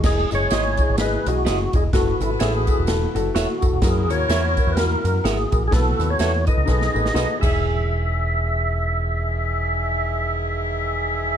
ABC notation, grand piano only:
X:1
M:4/4
L:1/8
Q:"Swing" 1/4=126
K:E
V:1 name="Grand piano"
[EGd] [EGd] [EGd] [EGd] [EGd] [EGd] [EGd] [EGd] | [EFA] [EFA] [EFA] [EFA] [EFA] [EFA] [EFA] [EFA] | [EF^A] [EFA] [EFA] [EFA] [EFA] [EFA] [EFA] [EFA] | [EAB] [EAB] [EAB] [EAB] [DAB] [DAB] [DAB] [E,Ge]- |
[E,Ge]8- | [E,Ge]8 |]